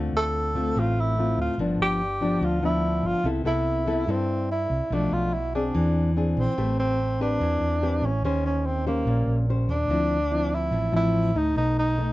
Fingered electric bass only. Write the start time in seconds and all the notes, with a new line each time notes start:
Already playing: D2
0.13 D2
0.75 A1
1.37 D2
1.58 G1
1.79 G1
2.41 D2
3.03 G1
3.24 C2
3.45 C2
4.07 G2
4.70 C2
4.90 B1
5.12 B1
5.75 E2
6.37 A#1
6.58 A1
7.40 E2
7.60 E2
8.02 A1
8.22 D#2
9.05 A#1
9.26 A#1
9.68 D#2
9.88 D2
10.71 A1
10.92 A1
11.35 D2
11.56 B1